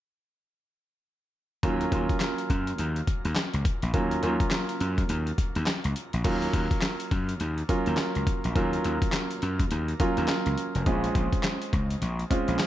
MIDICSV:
0, 0, Header, 1, 5, 480
1, 0, Start_track
1, 0, Tempo, 576923
1, 1358, Time_signature, 4, 2, 24, 8
1, 10540, End_track
2, 0, Start_track
2, 0, Title_t, "Grand piano"
2, 0, Program_c, 0, 0
2, 1357, Note_on_c, 0, 54, 85
2, 1361, Note_on_c, 0, 58, 74
2, 1363, Note_on_c, 0, 61, 78
2, 1368, Note_on_c, 0, 65, 90
2, 1500, Control_c, 0, 64, 127
2, 1553, Note_off_c, 0, 54, 0
2, 1555, Note_off_c, 0, 58, 0
2, 1556, Note_off_c, 0, 61, 0
2, 1559, Note_off_c, 0, 65, 0
2, 1597, Note_on_c, 0, 54, 77
2, 1601, Note_on_c, 0, 58, 67
2, 1604, Note_on_c, 0, 61, 67
2, 1607, Note_on_c, 0, 65, 90
2, 2337, Note_off_c, 0, 54, 0
2, 2338, Note_off_c, 0, 58, 0
2, 2340, Note_off_c, 0, 61, 0
2, 2342, Note_off_c, 0, 65, 0
2, 3276, Note_on_c, 0, 54, 82
2, 3279, Note_on_c, 0, 58, 76
2, 3283, Note_on_c, 0, 61, 80
2, 3286, Note_on_c, 0, 65, 89
2, 3472, Note_off_c, 0, 54, 0
2, 3474, Note_off_c, 0, 58, 0
2, 3476, Note_off_c, 0, 61, 0
2, 3478, Note_off_c, 0, 65, 0
2, 3518, Note_on_c, 0, 54, 77
2, 3521, Note_on_c, 0, 58, 77
2, 3524, Note_on_c, 0, 61, 74
2, 3527, Note_on_c, 0, 65, 86
2, 4257, Note_off_c, 0, 54, 0
2, 4259, Note_off_c, 0, 58, 0
2, 4260, Note_off_c, 0, 61, 0
2, 4262, Note_off_c, 0, 65, 0
2, 5193, Note_on_c, 0, 54, 87
2, 5197, Note_on_c, 0, 58, 75
2, 5200, Note_on_c, 0, 61, 74
2, 5203, Note_on_c, 0, 65, 96
2, 5208, Control_c, 0, 64, 0
2, 5360, Control_c, 0, 64, 127
2, 5935, Note_off_c, 0, 54, 0
2, 5937, Note_off_c, 0, 58, 0
2, 5938, Note_off_c, 0, 61, 0
2, 5940, Note_off_c, 0, 65, 0
2, 6396, Note_on_c, 0, 54, 82
2, 6399, Note_on_c, 0, 58, 77
2, 6403, Note_on_c, 0, 61, 76
2, 6406, Note_on_c, 0, 65, 91
2, 6964, Note_off_c, 0, 54, 0
2, 6965, Note_off_c, 0, 58, 0
2, 6967, Note_off_c, 0, 61, 0
2, 6969, Note_off_c, 0, 65, 0
2, 7116, Note_on_c, 0, 54, 85
2, 7119, Note_on_c, 0, 58, 80
2, 7123, Note_on_c, 0, 61, 76
2, 7126, Note_on_c, 0, 65, 94
2, 7856, Note_off_c, 0, 54, 0
2, 7857, Note_off_c, 0, 58, 0
2, 7859, Note_off_c, 0, 61, 0
2, 7861, Note_off_c, 0, 65, 0
2, 8317, Note_on_c, 0, 54, 79
2, 8320, Note_on_c, 0, 58, 74
2, 8323, Note_on_c, 0, 61, 74
2, 8326, Note_on_c, 0, 65, 93
2, 8884, Note_off_c, 0, 54, 0
2, 8886, Note_off_c, 0, 58, 0
2, 8887, Note_off_c, 0, 61, 0
2, 8889, Note_off_c, 0, 65, 0
2, 9037, Note_on_c, 0, 56, 92
2, 9039, Note_on_c, 0, 60, 78
2, 9043, Note_on_c, 0, 61, 77
2, 9046, Note_on_c, 0, 65, 87
2, 9047, Control_c, 0, 64, 0
2, 9190, Control_c, 0, 64, 127
2, 9777, Note_off_c, 0, 56, 0
2, 9778, Note_off_c, 0, 60, 0
2, 9780, Note_off_c, 0, 61, 0
2, 9781, Note_off_c, 0, 65, 0
2, 10236, Note_on_c, 0, 56, 83
2, 10240, Note_on_c, 0, 60, 78
2, 10243, Note_on_c, 0, 61, 80
2, 10246, Note_on_c, 0, 65, 88
2, 10540, Note_off_c, 0, 56, 0
2, 10540, Note_off_c, 0, 60, 0
2, 10540, Note_off_c, 0, 61, 0
2, 10540, Note_off_c, 0, 65, 0
2, 10540, End_track
3, 0, Start_track
3, 0, Title_t, "Slap bass"
3, 0, Program_c, 1, 36
3, 1359, Note_on_c, 1, 39, 102
3, 1537, Note_off_c, 1, 39, 0
3, 1599, Note_on_c, 1, 39, 91
3, 1706, Note_off_c, 1, 39, 0
3, 2080, Note_on_c, 1, 42, 80
3, 2257, Note_off_c, 1, 42, 0
3, 2321, Note_on_c, 1, 39, 90
3, 2498, Note_off_c, 1, 39, 0
3, 2704, Note_on_c, 1, 39, 83
3, 2774, Note_off_c, 1, 39, 0
3, 2944, Note_on_c, 1, 37, 76
3, 3014, Note_off_c, 1, 37, 0
3, 3184, Note_on_c, 1, 34, 99
3, 3254, Note_off_c, 1, 34, 0
3, 3278, Note_on_c, 1, 39, 94
3, 3456, Note_off_c, 1, 39, 0
3, 3520, Note_on_c, 1, 39, 92
3, 3627, Note_off_c, 1, 39, 0
3, 4000, Note_on_c, 1, 42, 90
3, 4177, Note_off_c, 1, 42, 0
3, 4239, Note_on_c, 1, 39, 101
3, 4416, Note_off_c, 1, 39, 0
3, 4626, Note_on_c, 1, 39, 82
3, 4695, Note_off_c, 1, 39, 0
3, 4865, Note_on_c, 1, 37, 83
3, 4935, Note_off_c, 1, 37, 0
3, 5105, Note_on_c, 1, 34, 84
3, 5174, Note_off_c, 1, 34, 0
3, 5199, Note_on_c, 1, 39, 107
3, 5376, Note_off_c, 1, 39, 0
3, 5438, Note_on_c, 1, 39, 93
3, 5546, Note_off_c, 1, 39, 0
3, 5920, Note_on_c, 1, 42, 89
3, 6097, Note_off_c, 1, 42, 0
3, 6161, Note_on_c, 1, 39, 90
3, 6338, Note_off_c, 1, 39, 0
3, 6548, Note_on_c, 1, 39, 81
3, 6616, Note_off_c, 1, 39, 0
3, 6789, Note_on_c, 1, 37, 79
3, 6857, Note_off_c, 1, 37, 0
3, 7028, Note_on_c, 1, 34, 100
3, 7097, Note_off_c, 1, 34, 0
3, 7120, Note_on_c, 1, 39, 92
3, 7297, Note_off_c, 1, 39, 0
3, 7363, Note_on_c, 1, 39, 91
3, 7469, Note_off_c, 1, 39, 0
3, 7842, Note_on_c, 1, 42, 85
3, 8018, Note_off_c, 1, 42, 0
3, 8082, Note_on_c, 1, 39, 94
3, 8258, Note_off_c, 1, 39, 0
3, 8467, Note_on_c, 1, 39, 87
3, 8536, Note_off_c, 1, 39, 0
3, 8705, Note_on_c, 1, 37, 82
3, 8774, Note_off_c, 1, 37, 0
3, 8945, Note_on_c, 1, 29, 99
3, 9015, Note_off_c, 1, 29, 0
3, 9040, Note_on_c, 1, 34, 96
3, 9217, Note_off_c, 1, 34, 0
3, 9279, Note_on_c, 1, 34, 86
3, 9386, Note_off_c, 1, 34, 0
3, 9761, Note_on_c, 1, 37, 91
3, 9938, Note_off_c, 1, 37, 0
3, 9999, Note_on_c, 1, 34, 104
3, 10177, Note_off_c, 1, 34, 0
3, 10385, Note_on_c, 1, 34, 88
3, 10455, Note_off_c, 1, 34, 0
3, 10540, End_track
4, 0, Start_track
4, 0, Title_t, "Muted slap bass strokes"
4, 2799, Note_on_c, 9, 29, 41
4, 2882, Note_off_c, 9, 29, 0
4, 4720, Note_on_c, 9, 29, 42
4, 4803, Note_off_c, 9, 29, 0
4, 6643, Note_on_c, 9, 29, 42
4, 6726, Note_off_c, 9, 29, 0
4, 8560, Note_on_c, 9, 29, 44
4, 8643, Note_off_c, 9, 29, 0
4, 10479, Note_on_c, 9, 29, 46
4, 10540, Note_off_c, 9, 29, 0
4, 10540, End_track
5, 0, Start_track
5, 0, Title_t, "Drums"
5, 1357, Note_on_c, 9, 42, 62
5, 1358, Note_on_c, 9, 36, 108
5, 1441, Note_off_c, 9, 36, 0
5, 1441, Note_off_c, 9, 42, 0
5, 1504, Note_on_c, 9, 42, 52
5, 1587, Note_off_c, 9, 42, 0
5, 1597, Note_on_c, 9, 36, 86
5, 1598, Note_on_c, 9, 42, 68
5, 1680, Note_off_c, 9, 36, 0
5, 1681, Note_off_c, 9, 42, 0
5, 1742, Note_on_c, 9, 36, 95
5, 1744, Note_on_c, 9, 42, 49
5, 1826, Note_off_c, 9, 36, 0
5, 1828, Note_off_c, 9, 42, 0
5, 1832, Note_on_c, 9, 39, 89
5, 1837, Note_on_c, 9, 38, 107
5, 1838, Note_on_c, 9, 42, 78
5, 1915, Note_off_c, 9, 39, 0
5, 1920, Note_off_c, 9, 38, 0
5, 1921, Note_off_c, 9, 42, 0
5, 1984, Note_on_c, 9, 42, 57
5, 2067, Note_off_c, 9, 42, 0
5, 2078, Note_on_c, 9, 36, 81
5, 2079, Note_on_c, 9, 42, 54
5, 2162, Note_off_c, 9, 36, 0
5, 2162, Note_off_c, 9, 42, 0
5, 2224, Note_on_c, 9, 42, 55
5, 2307, Note_off_c, 9, 42, 0
5, 2317, Note_on_c, 9, 42, 69
5, 2400, Note_off_c, 9, 42, 0
5, 2464, Note_on_c, 9, 42, 42
5, 2548, Note_off_c, 9, 42, 0
5, 2558, Note_on_c, 9, 36, 89
5, 2558, Note_on_c, 9, 42, 68
5, 2641, Note_off_c, 9, 36, 0
5, 2641, Note_off_c, 9, 42, 0
5, 2703, Note_on_c, 9, 42, 47
5, 2786, Note_off_c, 9, 42, 0
5, 2793, Note_on_c, 9, 39, 91
5, 2797, Note_on_c, 9, 38, 111
5, 2797, Note_on_c, 9, 42, 72
5, 2876, Note_off_c, 9, 39, 0
5, 2880, Note_off_c, 9, 38, 0
5, 2880, Note_off_c, 9, 42, 0
5, 2941, Note_on_c, 9, 42, 55
5, 3025, Note_off_c, 9, 42, 0
5, 3037, Note_on_c, 9, 36, 97
5, 3038, Note_on_c, 9, 42, 65
5, 3120, Note_off_c, 9, 36, 0
5, 3121, Note_off_c, 9, 42, 0
5, 3182, Note_on_c, 9, 42, 52
5, 3265, Note_off_c, 9, 42, 0
5, 3275, Note_on_c, 9, 42, 59
5, 3277, Note_on_c, 9, 36, 101
5, 3358, Note_off_c, 9, 42, 0
5, 3360, Note_off_c, 9, 36, 0
5, 3422, Note_on_c, 9, 42, 49
5, 3506, Note_off_c, 9, 42, 0
5, 3517, Note_on_c, 9, 42, 68
5, 3600, Note_off_c, 9, 42, 0
5, 3662, Note_on_c, 9, 36, 94
5, 3663, Note_on_c, 9, 42, 51
5, 3745, Note_off_c, 9, 36, 0
5, 3746, Note_off_c, 9, 42, 0
5, 3751, Note_on_c, 9, 39, 91
5, 3755, Note_on_c, 9, 38, 109
5, 3756, Note_on_c, 9, 42, 78
5, 3834, Note_off_c, 9, 39, 0
5, 3839, Note_off_c, 9, 38, 0
5, 3840, Note_off_c, 9, 42, 0
5, 3902, Note_on_c, 9, 42, 60
5, 3986, Note_off_c, 9, 42, 0
5, 3998, Note_on_c, 9, 42, 55
5, 4081, Note_off_c, 9, 42, 0
5, 4142, Note_on_c, 9, 36, 85
5, 4143, Note_on_c, 9, 42, 52
5, 4226, Note_off_c, 9, 36, 0
5, 4226, Note_off_c, 9, 42, 0
5, 4236, Note_on_c, 9, 42, 73
5, 4319, Note_off_c, 9, 42, 0
5, 4383, Note_on_c, 9, 42, 40
5, 4467, Note_off_c, 9, 42, 0
5, 4477, Note_on_c, 9, 36, 84
5, 4477, Note_on_c, 9, 42, 67
5, 4560, Note_off_c, 9, 42, 0
5, 4561, Note_off_c, 9, 36, 0
5, 4621, Note_on_c, 9, 42, 47
5, 4704, Note_off_c, 9, 42, 0
5, 4713, Note_on_c, 9, 39, 92
5, 4718, Note_on_c, 9, 38, 106
5, 4718, Note_on_c, 9, 42, 75
5, 4796, Note_off_c, 9, 39, 0
5, 4801, Note_off_c, 9, 38, 0
5, 4801, Note_off_c, 9, 42, 0
5, 4861, Note_on_c, 9, 42, 57
5, 4944, Note_off_c, 9, 42, 0
5, 4958, Note_on_c, 9, 42, 64
5, 5041, Note_off_c, 9, 42, 0
5, 5102, Note_on_c, 9, 42, 54
5, 5185, Note_off_c, 9, 42, 0
5, 5196, Note_on_c, 9, 42, 62
5, 5196, Note_on_c, 9, 49, 81
5, 5197, Note_on_c, 9, 36, 108
5, 5279, Note_off_c, 9, 42, 0
5, 5279, Note_off_c, 9, 49, 0
5, 5280, Note_off_c, 9, 36, 0
5, 5343, Note_on_c, 9, 42, 51
5, 5426, Note_off_c, 9, 42, 0
5, 5437, Note_on_c, 9, 36, 93
5, 5437, Note_on_c, 9, 42, 72
5, 5520, Note_off_c, 9, 36, 0
5, 5520, Note_off_c, 9, 42, 0
5, 5582, Note_on_c, 9, 36, 98
5, 5584, Note_on_c, 9, 42, 51
5, 5665, Note_off_c, 9, 36, 0
5, 5667, Note_off_c, 9, 42, 0
5, 5670, Note_on_c, 9, 39, 86
5, 5675, Note_on_c, 9, 38, 117
5, 5676, Note_on_c, 9, 42, 82
5, 5754, Note_off_c, 9, 39, 0
5, 5758, Note_off_c, 9, 38, 0
5, 5759, Note_off_c, 9, 42, 0
5, 5823, Note_on_c, 9, 42, 62
5, 5906, Note_off_c, 9, 42, 0
5, 5918, Note_on_c, 9, 36, 85
5, 5919, Note_on_c, 9, 42, 54
5, 6002, Note_off_c, 9, 36, 0
5, 6002, Note_off_c, 9, 42, 0
5, 6063, Note_on_c, 9, 42, 55
5, 6146, Note_off_c, 9, 42, 0
5, 6156, Note_on_c, 9, 42, 67
5, 6239, Note_off_c, 9, 42, 0
5, 6305, Note_on_c, 9, 42, 40
5, 6388, Note_off_c, 9, 42, 0
5, 6398, Note_on_c, 9, 42, 73
5, 6399, Note_on_c, 9, 36, 88
5, 6481, Note_off_c, 9, 42, 0
5, 6482, Note_off_c, 9, 36, 0
5, 6541, Note_on_c, 9, 42, 46
5, 6624, Note_off_c, 9, 42, 0
5, 6632, Note_on_c, 9, 39, 88
5, 6637, Note_on_c, 9, 38, 106
5, 6637, Note_on_c, 9, 42, 80
5, 6715, Note_off_c, 9, 39, 0
5, 6720, Note_off_c, 9, 38, 0
5, 6720, Note_off_c, 9, 42, 0
5, 6783, Note_on_c, 9, 42, 52
5, 6866, Note_off_c, 9, 42, 0
5, 6879, Note_on_c, 9, 36, 91
5, 6880, Note_on_c, 9, 42, 67
5, 6962, Note_off_c, 9, 36, 0
5, 6963, Note_off_c, 9, 42, 0
5, 7024, Note_on_c, 9, 42, 50
5, 7107, Note_off_c, 9, 42, 0
5, 7118, Note_on_c, 9, 42, 64
5, 7119, Note_on_c, 9, 36, 105
5, 7202, Note_off_c, 9, 36, 0
5, 7202, Note_off_c, 9, 42, 0
5, 7265, Note_on_c, 9, 42, 53
5, 7348, Note_off_c, 9, 42, 0
5, 7359, Note_on_c, 9, 42, 67
5, 7442, Note_off_c, 9, 42, 0
5, 7503, Note_on_c, 9, 36, 96
5, 7504, Note_on_c, 9, 42, 54
5, 7586, Note_off_c, 9, 36, 0
5, 7587, Note_off_c, 9, 42, 0
5, 7591, Note_on_c, 9, 39, 96
5, 7596, Note_on_c, 9, 38, 108
5, 7597, Note_on_c, 9, 42, 85
5, 7674, Note_off_c, 9, 39, 0
5, 7679, Note_off_c, 9, 38, 0
5, 7680, Note_off_c, 9, 42, 0
5, 7743, Note_on_c, 9, 42, 60
5, 7826, Note_off_c, 9, 42, 0
5, 7838, Note_on_c, 9, 42, 58
5, 7921, Note_off_c, 9, 42, 0
5, 7983, Note_on_c, 9, 36, 80
5, 7983, Note_on_c, 9, 42, 56
5, 8066, Note_off_c, 9, 36, 0
5, 8066, Note_off_c, 9, 42, 0
5, 8076, Note_on_c, 9, 42, 73
5, 8159, Note_off_c, 9, 42, 0
5, 8224, Note_on_c, 9, 42, 42
5, 8307, Note_off_c, 9, 42, 0
5, 8317, Note_on_c, 9, 42, 68
5, 8319, Note_on_c, 9, 36, 88
5, 8401, Note_off_c, 9, 42, 0
5, 8402, Note_off_c, 9, 36, 0
5, 8462, Note_on_c, 9, 42, 46
5, 8545, Note_off_c, 9, 42, 0
5, 8553, Note_on_c, 9, 39, 96
5, 8558, Note_on_c, 9, 38, 113
5, 8558, Note_on_c, 9, 42, 73
5, 8636, Note_off_c, 9, 39, 0
5, 8641, Note_off_c, 9, 38, 0
5, 8641, Note_off_c, 9, 42, 0
5, 8702, Note_on_c, 9, 42, 54
5, 8785, Note_off_c, 9, 42, 0
5, 8799, Note_on_c, 9, 42, 62
5, 8882, Note_off_c, 9, 42, 0
5, 8944, Note_on_c, 9, 42, 54
5, 9027, Note_off_c, 9, 42, 0
5, 9037, Note_on_c, 9, 42, 59
5, 9038, Note_on_c, 9, 36, 110
5, 9120, Note_off_c, 9, 42, 0
5, 9121, Note_off_c, 9, 36, 0
5, 9184, Note_on_c, 9, 42, 50
5, 9267, Note_off_c, 9, 42, 0
5, 9278, Note_on_c, 9, 36, 95
5, 9278, Note_on_c, 9, 42, 68
5, 9361, Note_off_c, 9, 36, 0
5, 9361, Note_off_c, 9, 42, 0
5, 9423, Note_on_c, 9, 36, 92
5, 9425, Note_on_c, 9, 42, 51
5, 9506, Note_off_c, 9, 36, 0
5, 9508, Note_off_c, 9, 42, 0
5, 9512, Note_on_c, 9, 39, 92
5, 9517, Note_on_c, 9, 38, 110
5, 9518, Note_on_c, 9, 42, 78
5, 9595, Note_off_c, 9, 39, 0
5, 9600, Note_off_c, 9, 38, 0
5, 9601, Note_off_c, 9, 42, 0
5, 9665, Note_on_c, 9, 42, 56
5, 9748, Note_off_c, 9, 42, 0
5, 9759, Note_on_c, 9, 36, 85
5, 9759, Note_on_c, 9, 42, 57
5, 9842, Note_off_c, 9, 36, 0
5, 9843, Note_off_c, 9, 42, 0
5, 9905, Note_on_c, 9, 42, 58
5, 9988, Note_off_c, 9, 42, 0
5, 9999, Note_on_c, 9, 42, 72
5, 10082, Note_off_c, 9, 42, 0
5, 10146, Note_on_c, 9, 42, 41
5, 10229, Note_off_c, 9, 42, 0
5, 10239, Note_on_c, 9, 36, 85
5, 10239, Note_on_c, 9, 42, 75
5, 10322, Note_off_c, 9, 36, 0
5, 10322, Note_off_c, 9, 42, 0
5, 10383, Note_on_c, 9, 42, 50
5, 10466, Note_off_c, 9, 42, 0
5, 10475, Note_on_c, 9, 39, 87
5, 10480, Note_on_c, 9, 38, 112
5, 10480, Note_on_c, 9, 42, 82
5, 10540, Note_off_c, 9, 38, 0
5, 10540, Note_off_c, 9, 39, 0
5, 10540, Note_off_c, 9, 42, 0
5, 10540, End_track
0, 0, End_of_file